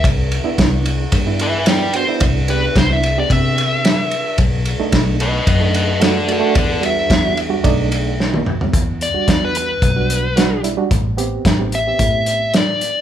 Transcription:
<<
  \new Staff \with { instrumentName = "Lead electric guitar" } { \time 4/4 \key e \minor \tempo 4 = 110 r2 r8 <b' e''>8 <d'' g''>8 c''8 | r8 b'8 c''16 e''8 d''16 e''2 | r4. <b' dis''>8 <b' dis''>8 <b' dis''>8 <a' d''>8 <a' d''>8 | <a' d''>8 e''4 r2 r8 |
r8 d''8 d''16 b'16 b'2 r8 | r4. e''4. d''4 | }
  \new Staff \with { instrumentName = "Reed electric piano" } { \time 4/4 \key e \minor r8. <b d' e'>4 r8 <b d' e'>8 r16 <b d' e'>16 r16 <b d' fis'>16 <b d' e'>16~ | <b d' e'>16 r16 <b d' g'>8 r16 <b d' e'>16 r16 <b d' g'>4. r8. | r8. <a d' dis'>4 r8 <a d' dis'>8 r16 <a d' fis'>16 r16 <a d' fis'>16 <a d' fis'>16 | r8 <g d' fis'>8 r16 <g d' fis'>16 r16 <g d' fis'>16 <a d' dis'>4. r8 |
r8. <g d' fis'>4 r8 <g d' fis'>8 r16 <g d' fis'>16 r16 <g d' e'>16 <g d' fis'>16 | r8 <b c' g'>8 r16 <b c' g'>16 r16 <b c' g'>4. r8. | }
  \new Staff \with { instrumentName = "Fingered electric bass" } { \clef bass \time 4/4 \key e \minor c,8. r16 c,4 g,2 | c,4 c,4 c2 | b,,8. r16 b,,4 fis,2 | e,4 e,4 b,,2 |
e,8. r16 e,4 b,,2 | a,,4 a,,4 a,2 | }
  \new DrumStaff \with { instrumentName = "Drums" } \drummode { \time 4/4 <bd cymr>8 cymr8 <bd cymr sn>8 cymr8 <bd cymr>8 cymr8 <cymr sn>8 cymr8 | <bd cymr>8 cymr8 <bd cymr sn>8 cymr8 <bd cymr>8 cymr8 <cymr sn>8 cymr8 | <bd cymr>8 cymr8 <bd cymr sn>8 cymr8 <bd cymr>8 cymr8 <cymr sn>8 cymr8 | <bd cymr>8 cymr8 <bd cymr sn>8 cymr8 <bd cymr>8 cymr8 sn16 tommh16 toml16 tomfh16 |
<hh bd>8 hh8 <hh bd sn>8 hh8 <hh bd>8 hh8 <hh sn>8 hh8 | <hh bd>8 hh8 <hh bd sn>8 hh8 <hh bd>8 hh8 <hh sn>8 hh8 | }
>>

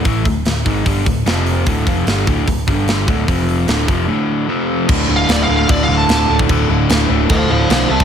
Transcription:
<<
  \new Staff \with { instrumentName = "Lead electric guitar" } { \time 4/4 \key d \minor \tempo 4 = 149 r1 | r1 | r1 | \tuplet 3/2 { r4 f''8 d''8 f''8 f''8 d''8 f''8 a''8~ } a''8 r8 |
r2 <c'' f''>8 <c'' f''>8 <c'' f''>8 <e'' a''>8 | }
  \new Staff \with { instrumentName = "Overdriven electric guitar" } { \clef bass \time 4/4 \key d \minor <a, e a>8 <d, a,>8 <d, a,>8 <gis, ees gis>8 <g, d g>8 <d, a,>8 <f, c f>4 | <d, a, d>8 <f, c f>8 <g, d g>8 <d, a, d>8 <d, a,>8 <g, d g>4 <d, a, d>8 | <f, c f>4 <d, a, d>8 <f, c f>8 <d, a, d>4 <f, c f>4 | <d, a, d>8 <d, a, d>8 <d, a, d>8 <d, a, d>8 <d, a, d>8 <d, a, d>8 <d, a, d>8 <d, a, d>8 |
<d, a, d>8 <d, a, d>8 <d, a, d>8 <d, a, d>8 <d, a, d>8 <d, a, d>8 <d, a, d>8 <c g c'>8 | }
  \new Staff \with { instrumentName = "Overdriven electric guitar" } { \clef bass \time 4/4 \key d \minor <a, e a>8 <d, a,>8 <d, a,>8 <gis, ees gis>8 <g, d g>8 <d, a,>8 <f, c f>4 | <d, a, d>8 <f, c f>8 <g, d g>8 <d, a, d>8 <d, a,>8 <g, d g>4 <d, a, d>8 | <f, c f>4 <d, a, d>8 <f, c f>8 <d, a, d>4 <f, c f>4 | <d, a, d>8 <d, a, d>8 <d, a, d>8 <d, a, d>8 <d, a, d>8 <d, a, d>8 <d, a, d>8 <d, a, d>8 |
<d, a, d>8 <d, a, d>8 <d, a, d>8 <d, a, d>8 <d, a, d>8 <d, a, d>8 <d, a, d>8 <c g c'>8 | }
  \new Staff \with { instrumentName = "Picked electric bass" } { \clef bass \time 4/4 \key d \minor a,,8 d,,8 d,,8 gis,,8 g,,8 d,,8 f,,4 | d,,8 f,,8 g,,8 d,,8 d,,8 g,,4 d,,8 | f,,4 d,,8 f,,8 r2 | d,,8 d,,8 d,,8 d,,8 d,,8 d,,8 d,,8 d,,8 |
d,,8 d,,8 d,,8 d,,8 d,,8 d,,8 b,,8 c,8 | }
  \new DrumStaff \with { instrumentName = "Drums" } \drummode { \time 4/4 <hho bd>8 <hho bd>8 <hho sn>8 <hho bd>8 <hho bd>8 <hho bd>8 <hho sn>8 hho8 | <hho bd>8 <hho bd>8 <hho sn>8 <hho bd>8 <hho bd>8 <hho bd>8 <hho sn>8 <hho bd>8 | <hho bd>8 hho8 <hho sn>8 <hho bd>8 r4 r4 | <cymc bd>4 <cymc sn>4 <cymc bd>4 <cymc sn>8. bd16 |
<cymc bd>4 <cymc sn>4 <cymc bd>4 <cymc sn>8. bd16 | }
>>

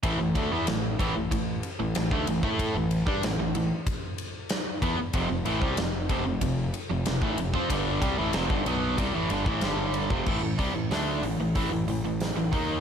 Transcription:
<<
  \new Staff \with { instrumentName = "Overdriven electric guitar" } { \clef bass \time 4/4 \key a \minor \tempo 4 = 94 <a, e>16 <a, e>16 <d a>16 <e b>16 <a, e>8 <a, e>16 <a, e>16 <a, e>8 r16 <a, e>16 <a, e>16 <d a>16 <a, e>16 <a e' a'>16~ | <a e' a'>16 <a, e>8 <g d'>16 <a, e>16 <a, e>16 <a, e>16 r4. r16 <e b>16 r16 | <f, c>16 <f, c>16 <a, e>16 <c g>16 <f, c>8 <f, c>16 <f, c>16 <f, c>8 r16 <f, c>16 <f, c>16 <a, e>16 <f, c>16 <f c'>16 | <g, d g>8 <c g>16 <a, e>16 <f, c>16 <g, d>16 <b, fis b>8 <c g>16 <a, e>16 <g, d>16 <a, e>16 <g, d g>8. <f, c>16 |
<a, e>16 <a, e>16 <c g>16 <a, e>16 <d a d'>8 <a, e>16 <a, e>16 <a, e>16 <a, e>16 <a, e>16 <a, e>8 <a, e>16 <dis bes dis'>8 | }
  \new Staff \with { instrumentName = "Overdriven electric guitar" } { \clef bass \time 4/4 \key a \minor <a, e>16 <a, e>16 <d a>16 <e b>16 <a, e>8 <a, e>16 <a, e>16 <a, e>8 r16 <a, e>16 <a, e>16 <d a>16 <a, e>16 <a e' a'>16~ | <a e' a'>16 <a, e>8 <g d'>16 <a, e>16 <a, e>16 <a, e>16 r4. r16 <e b>16 r16 | <f, c>16 <f, c>16 <a, e>16 <c g>16 <f, c>8 <f, c>16 <f, c>16 <f, c>8 r16 <f, c>16 <f, c>16 <a, e>16 <f, c>16 <f c'>16 | <g, d g>8 <c g>16 <a, e>16 <f, c>16 <g, d>16 <b, fis b>8 <c g>16 <a, e>16 <g, d>16 <a, e>16 <g, d g>8. <f, c>16 |
<a, e>16 <a, e>16 <c g>16 <a, e>16 <d a d'>8 <a, e>16 <a, e>16 <a, e>16 <a, e>16 <a, e>16 <a, e>8 <a, e>16 <dis bes dis'>8 | }
  \new Staff \with { instrumentName = "Picked electric bass" } { \clef bass \time 4/4 \key a \minor a,,16 a,,16 d,16 e,16 a,,8 a,,16 a,,16 a,,8 r16 a,,16 a,,16 d,16 a,,16 a,16~ | a,16 a,,8 g,16 a,,16 a,,16 a,,16 r4. r16 e,16 r16 | f,,16 f,,16 a,,16 c,16 f,,8 f,,16 f,,16 f,,8 r16 f,,16 f,,16 a,,16 f,,16 f,16 | g,,8 c,16 a,,16 f,,16 g,,16 b,,8 c,16 a,,16 g,,16 a,,16 g,,8. f,,16 |
a,,16 a,,16 c,16 a,,16 d,8 a,,16 a,,16 a,,16 a,,16 a,,16 a,,8 a,,16 dis,8 | }
  \new DrumStaff \with { instrumentName = "Drums" } \drummode { \time 4/4 <bd cymr>8 <bd cymr>8 <cymr sn>8 <bd cymr>8 <bd cymr>8 cymr8 <cymr sn>16 bd16 cymr16 bd16 | <bd cymr>8 cymr16 bd16 <cymr sn>8 cymr8 <bd cymr>8 cymr8 <cymr sn>8 <bd cymr>8 | <bd cymr>8 cymr16 bd16 <cymr sn>8 <bd cymr>8 <bd cymr>8 cymr8 <cymr sn>16 bd16 cymr16 bd16 | <bd cymr>8 <bd cymr>8 <cymr sn>16 bd16 cymr8 <bd cymr>8 cymr16 bd16 <cymr sn>8 cymr16 bd16 |
<cymc bd>8 <hho bd>8 <hho sn>8 hho8 <hho bd>8 hho8 <hho sn>8 <hho bd>8 | }
>>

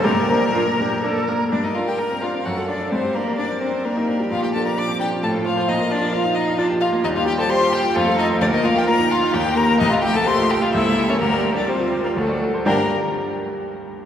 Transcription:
<<
  \new Staff \with { instrumentName = "Violin" } { \time 3/4 \key g \minor \tempo 4 = 129 bes'2 r4 | d''16 ees''16 f''16 g''16 bes''8 f''8 fis''8 d''8 | c''8 bes'8 d''8 c''8 bes'4 | f''16 g''16 a''16 bes''16 d'''8 g''8 a''8 f''8 |
ees''8 d''8 f''8 ees''8 d''8 f''8 | ees''16 f''16 g''16 a''16 c'''8 g''8 f''8 ees''8 | d''16 ees''16 f''16 g''16 bes''8 f''8 g''8 bes''8 | ees''16 f''16 g''16 a''16 c'''8 g''16 f''16 e''8. cis''16 |
bes'8. d''16 c''8. bes'16 a'4 | bes'8 r2 r8 | }
  \new Staff \with { instrumentName = "Cello" } { \time 3/4 \key g \minor bes,2 r4 | bes'2 a'4 | g'4 bes'4 g'4~ | g'2 f'4~ |
f'2. | g'4 g'4 a'4 | bes'2 ees'4 | g'2 a'4 |
g'4 f'4 fis'8 r8 | d8 r2 r8 | }
  \new Staff \with { instrumentName = "Grand piano" } { \time 3/4 \key g \minor g,8 <bes d' bes'>8 <bes d' bes'>8 <bes d' bes'>8 <bes d' bes'>8 <bes d' bes'>8 | g,16 bes'16 d'16 bes'16 d'16 c'16 d'16 c'16 fis,16 a'16 d'16 d''16 | g,16 g'16 d'16 d''16 d'16 c'16 d'16 c'16 d'16 ees'16 d'16 g16 | bes,16 f'16 d'16 d''16 d'16 c'16 d'16 c'16 a,16 f'16 f16 c''16 |
bes,16 bes'16 f'16 bes'16 f'16 ees'16 f'16 ees'16 f'16 g'16 f'16 bes16 | ees,16 g'16 g16 c''16 g'16 f'16 g'16 f'16 f,16 a'16 f'16 c''16 | d,16 bes'16 f'16 bes'16 f'16 ees'16 f'16 ees'16 ees,16 bes'16 g'16 bes'16 | c,16 ees''16 g'16 a'16 g'16 f'16 g'16 f'16 cis,16 e''16 g'16 ais'16 |
d,16 d''16 g'16 bes'16 g'16 f'16 g'16 f'16 d,16 d''16 fis'16 c''16 | <g, g d' g' d'' g''>8 r2 r8 | }
  \new Staff \with { instrumentName = "Violin" } { \time 3/4 \key g \minor bes'2~ bes'8 r8 | d'16 ees'16 f'16 g'16 bes'8 f'8 fis'8 d'8 | c'8 bes8 d'8 c'8 bes4 | f'16 g'16 a'16 bes'16 d''8 g'8 a'8 f'8 |
ees'8 d'8 f'8 ees'8 d'8 f'8 | ees'16 f'16 g'16 a'16 c''8 g'8 f'8 ees'8 | d'16 ees'16 f'16 g'16 bes'8 f'8 g'8 bes'8 | ees'16 f'16 g'16 a'16 c''8 g'16 f'16 e'8. cis'16 |
bes8. d'16 c'8. bes16 a4 | bes8 r2 r8 | }
  \new Staff \with { instrumentName = "Viola" } { \time 3/4 \key g \minor g'4 f'8 g'8 a'8 bes'8 | d'16 ees'16 f'16 g'16 bes'8 f'8 fis'8 d'8 | c'8 bes8 d'8 c'8 bes4 | f2.~ |
f2. | g4 g4 a4 | bes4 bes4 bes4 | a4 a4 ais4 |
g2 fis8 r8 | d'8 r2 r8 | }
>>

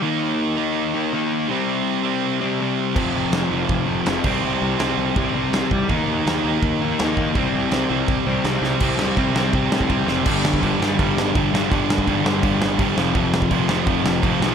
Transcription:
<<
  \new Staff \with { instrumentName = "Distorted electric guitar" } { \clef bass \time 4/4 \key c \major \tempo 4 = 164 <ees bes ees'>2~ <ees bes ees'>8 <ees bes ees'>8 <ees bes ees'>4 | <c g c'>2~ <c g c'>8 <c g c'>8 <c g c'>4 | <f, c f>2~ <f, c f>8 <f, c f>8 <f, c f>8 <c g c'>8~ | <c g c'>2 <c g c'>8 <c g c'>4 r8 |
<ees bes ees'>2~ <ees bes ees'>8 <ees bes ees'>8 <ees bes ees'>4 | <c g c'>2~ <c g c'>8 <c g c'>8 <c g c'>4 | <c g c'>4 <c g c'>8 <c g c'>8 <c g c'>4 <c g c'>8 <c g c'>8 | <g, d g>4 <g, d g>8 <g, d g>8 <g, d g>4 <g, d g>8 <g, d g>8 |
<g, d g>4 <g, d g>8 <g, d g>8 <g, d g>4 <g, d g>8 <f, c f>8 | <f, c f>4 <f, c f>8 <f, c f>8 <f, c f>4 <f, c f>8 <f, c f>8 | }
  \new Staff \with { instrumentName = "Distorted electric guitar" } { \clef bass \time 4/4 \key c \major <ees bes ees'>4. <ees bes ees'>2~ <ees bes ees'>8 | <c g c'>4. <c g c'>2~ <c g c'>8 | <f, c f>4. <f, c f>2 <c g c'>8~ | <c g c'>4 <c g c'>2~ <c g c'>8 r8 |
<ees bes ees'>4. <ees bes ees'>2~ <ees bes ees'>8 | <c g c'>4. <c g c'>2~ <c g c'>8 | <c g c'>4 <c g c'>8 <c g c'>8 <c g c'>4 <c g c'>8 <c g c'>8 | <g, d g>4 <g, d g>8 <g, d g>8 <g, d g>4 <g, d g>8 <g, d g>8 |
<g, d g>4 <g, d g>8 <g, d g>8 <g, d g>4 <g, d g>8 <f, c f>8 | <f, c f>4 <f, c f>8 <f, c f>8 <f, c f>4 <f, c f>8 <f, c f>8 | }
  \new Staff \with { instrumentName = "Picked electric bass" } { \clef bass \time 4/4 \key c \major r1 | r1 | f,,8 f,,8 f,,8 f,,8 f,,8 f,,8 f,,8 c,8 | c,8 c,8 c,8 c,8 c,8 c,8 c,8 c,8 |
ees,8 ees,8 ees,8 ees,8 ees,8 ees,8 ees,8 ees,8 | c,8 c,8 c,8 c,8 c,8 c,8 c,8 c,8 | c,8 c,8 c,8 c,8 c,8 a,8 c,8 f,,8 | g,,4 g,,8 g,,8 g,,8 g,,8 g,,8 g,,8 |
g,,4 g,,8 g,,8 g,,8 g,,8 g,,8 f,,8 | f,,4 f,,8 f,,8 f,,8 f,,8 f,,8 b,,8 | }
  \new DrumStaff \with { instrumentName = "Drums" } \drummode { \time 4/4 r4 r4 r4 r4 | r4 r4 r4 r4 | <cymc bd>4 <cymr sn>4 <bd cymr>4 <cymr sn>8 <cymc bd>8 | r4 <cymr sn>4 <bd cymr>4 <cymr sn>8 bd8 |
<bd cymr>4 <cymr sn>4 <bd cymr>4 <cymr sn>8 bd8 | <bd cymr>4 <cymr sn>4 <bd cymr>4 <cymr sn>8 sn8 | <cymc bd>8 sn8 <bd cymr>8 sn8 <bd cymr>8 sn16 bd16 <bd cymr>8 sn8 | <cymc bd>8 sn16 bd16 <cymc bd>8 sn8 <cymc bd>8 sn8 <cymc bd>8 sn8 |
<cymc bd>8 sn16 bd16 <cymc bd>8 sn8 <cymc bd>8 sn8 <cymc bd>8 sn8 | <cymc bd>8 sn16 bd16 <cymc bd>8 sn8 <cymc bd>8 sn8 <cymc bd>8 sn8 | }
>>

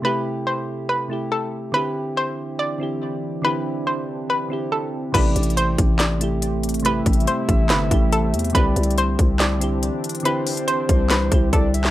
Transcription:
<<
  \new Staff \with { instrumentName = "Soft synth lead" } { \time 4/4 \key a \minor \tempo 4 = 141 r1 | r1 | r1 | d''4 r2. |
e''1 | d''4 r2. | c''2. d''8 e''8 | }
  \new Staff \with { instrumentName = "Synth pluck" } { \time 4/4 \key a \minor b'4 c''4 b'4 a'8 r8 | b'4 c''4 d''2 | b'4 c''4 b'4 a'8 r8 | b'4 c''4 d''2 |
b'4 c''4 b'4 a'8 r8 | b'4 c''4 d''2 | b'4 c''4 b'4 a'8 r8 | }
  \new Staff \with { instrumentName = "Synth keys" } { \time 4/4 \key a \minor <c a e' g'>2 r8 <c a e' g'>4. | <d c' e' g'>2 r8 <d c' e' g'>4. | <d c' e' g'>2 r8 <d c' e' g'>4. | <c a e' g'>2 r8 <c a e' g'>4. |
<c a e' g'>2 r8 <c a e' g'>4. | <d c' e' g'>2 r8 <d c' e' g'>4. | <d c' e' g'>2 r8 <d c' e' g'>4. | }
  \new Staff \with { instrumentName = "Ambient pad" } { \time 4/4 \key a \minor r1 | <e c' d'>1~ | <e c' d'>1 | <g a c'>1~ |
<g a c'>1 | <e d'>1~ | <e d'>1 | }
  \new Staff \with { instrumentName = "808-style bass" } { \clef bass \time 4/4 \key a \minor r1 | r1 | r1 | a,,8 a,,4 a,,2~ a,,8~ |
a,,8 a,,8 r8 a,,8 g,,8 a,,4 e,8 | c,8 c,4 c,4.~ c,16 r8. | r4. c,4 c,8 c,4 | }
  \new DrumStaff \with { instrumentName = "Drums" } \drummode { \time 4/4 r4 r4 r4 r4 | r4 r4 r4 r4 | r4 r4 r4 r4 | \tuplet 3/2 { <cymc hh bd>16 r16 r16 hh16 hh16 hh16 } hh8 <hh bd>8 <hc hh sn>8 hh8 hh8 hh32 hh32 hh32 hh32 |
\tuplet 3/2 { hh16 r16 r16 <hh bd>16 hh16 hh16 } hh8 <hh bd>8 <hc hh sn>8 <hh bd>8 hh8 hh32 hh32 hh32 hh32 | \tuplet 3/2 { <hh bd>16 r16 r16 hh16 hh16 hh16 } hh8 <hh bd>8 <hc hh sn>8 hh8 hh8 hh32 hh32 hh32 hh32 | hh8 <hh hho>16 hh16 hh8 <hh bd>8 <hc hh sn>8 <hh bd>8 <hh bd>8 hh16 <hc sn>16 | }
>>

